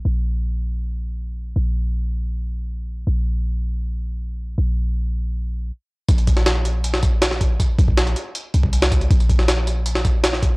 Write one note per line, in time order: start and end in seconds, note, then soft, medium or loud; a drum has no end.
0.05 1.54 A#1 medium
1.56 3.05 A#1 medium
3.07 4.56 A#1 medium
4.58 5.71 A#1 medium
6.09 7.58 A#1 loud
6.09 kick loud
6.09 closed hi-hat medium
6.18 closed hi-hat soft
6.27 kick medium
6.27 closed hi-hat medium
6.37 snare soft
6.46 snare loud
6.46 closed hi-hat medium
6.65 closed hi-hat medium
6.84 closed hi-hat medium
6.94 snare medium
7.03 kick loud
7.03 closed hi-hat medium
7.22 snare loud
7.22 closed hi-hat medium
7.31 snare soft
7.41 kick medium
7.41 closed hi-hat medium
7.60 kick loud
7.60 closed hi-hat medium
7.79 8.15 A#1 loud
7.79 kick loud
7.79 closed hi-hat medium
7.88 kick medium
7.97 snare loud
7.97 closed hi-hat medium
8.07 closed hi-hat soft
8.16 closed hi-hat medium
8.35 closed hi-hat medium
8.54 8.93 C2 medium
8.54 closed hi-hat medium
8.63 kick loud
8.73 closed hi-hat medium
8.82 snare loud
8.92 9.09 C#2 medium
8.92 kick loud
8.92 closed hi-hat medium
9.01 closed hi-hat soft
9.10 10.57 A#1 loud
9.10 kick loud
9.10 closed hi-hat medium
9.20 closed hi-hat soft
9.29 kick loud
9.29 closed hi-hat medium
9.39 snare soft
9.48 snare loud
9.48 closed hi-hat medium
9.67 closed hi-hat medium
9.86 closed hi-hat medium
9.95 snare medium
10.05 kick loud
10.05 closed hi-hat medium
10.24 snare loud
10.24 closed hi-hat medium
10.33 snare soft
10.43 kick loud
10.43 closed hi-hat medium